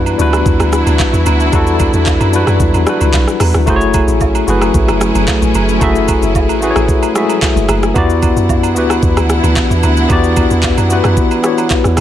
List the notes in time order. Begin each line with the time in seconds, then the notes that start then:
Already playing: F#2 E3 G3 B3 D4 E4 F#4 B4
0.06 high agogo, shaker
0.18 D2 G3 D4 E4 F#4 B4, shaker
0.33 cross-stick, high agogo, shaker
0.46 E2, kick, shaker
0.60 D2, cross-stick, high agogo, shaker
0.73 cross-stick, shaker
0.87 D2, high agogo, shaker
0.99 kick, clap, low woodblock, shaker
1.13 E2, shaker
1.26 D2, high agogo, shaker
1.40 shaker
1.52 E2 G3 D4 E4 F#4 A4, kick, high agogo, shaker
1.67 shaker
1.80 kick, high agogo, shaker
1.93 E2, shaker
2.06 kick, clap, low woodblock, shaker
2.20 F#2, high agogo, shaker
2.32 F#3 D4 E4 F#4 B4, shaker
2.39 G3
2.47 F#2, cross-stick, high agogo, shaker
2.60 E2, kick, shaker
2.74 E2, high agogo, shaker
2.86 G3 D4 E4 F#4 B4, cross-stick, shaker
3.01 C#2, high agogo, shaker
3.13 B1, kick, clap, low woodblock, shaker
3.28 cross-stick, shaker
3.40 E2, cross-stick, open hi-hat, high agogo, shaker
3.54 D2, cross-stick, shaker
3.66 F#1 F#3 A3 C#4 E4 F#4 G#4 C5, kick, high agogo, shaker
3.76 C#5
3.81 shaker
3.94 kick, high agogo, shaker
4.08 A1, shaker
4.21 kick, low woodblock, shaker
4.35 high agogo, shaker
4.46 F#1 A3 E4 F#4 G#4 B4, shaker
4.61 cross-stick, high agogo, shaker
4.74 A1, kick, shaker
4.88 F#1, cross-stick, high agogo, shaker
5.01 cross-stick, shaker
5.15 F#1, high agogo, shaker
5.28 kick, clap, low woodblock, shaker
5.42 A1, shaker
5.55 F#1, high agogo, shaker
5.69 shaker
5.80 F#1 A3 E4 F#4 G#4 E5, kick, high agogo, shaker
5.95 shaker
6.08 kick, high agogo, shaker
6.22 F#1, shaker
6.35 kick, low woodblock, shaker
6.49 A1, high agogo, shaker
6.60 A3 E4 F#4 G#4 B4, shaker
6.71 C#5
6.76 A1, cross-stick, high agogo, shaker
6.89 kick, shaker
7.03 high agogo, shaker
7.14 G#3 E4 F#4 G#4 E5, cross-stick, shaker
7.20 A3
7.29 high agogo, shaker
7.42 kick, clap, low woodblock, shaker
7.56 F#1, shaker
7.69 F#1, cross-stick, high agogo, shaker
7.83 cross-stick, shaker
7.94 E2 E3 B3 D4 E4 F#4 G4 D5 F#5, kick, high agogo, shaker
8.10 shaker
8.22 kick, high agogo, shaker
8.36 F#2, shaker
8.49 kick, low woodblock, shaker
8.63 high agogo, shaker
8.75 D2 B3 E4 F#4 G4 B4, shaker
8.90 cross-stick, high agogo, shaker
9.03 E2, kick, shaker
9.17 D2, cross-stick, high agogo, shaker
9.30 cross-stick, shaker
9.43 D2, high agogo, shaker
9.56 kick, clap, low woodblock, shaker
9.70 E2, shaker
9.83 D2, high agogo, shaker
9.97 shaker
10.09 E2 B3 E4 F#4 G4 D5, kick, high agogo, shaker
10.24 shaker
10.37 kick, high agogo, shaker
10.51 E2, shaker
10.63 kick, clap, low woodblock, shaker
10.78 F#2, high agogo, shaker
10.89 B3 E4 F#4 G4 B4, shaker
11.04 F#2, cross-stick, high agogo, shaker
11.17 kick, shaker
11.31 high agogo, shaker
11.42 B3 E4 F#4 G4 C#5, cross-stick, shaker
11.58 high agogo, shaker
11.70 kick, clap, low woodblock, shaker
11.84 E2, cross-stick, shaker
11.97 cross-stick, open hi-hat, shaker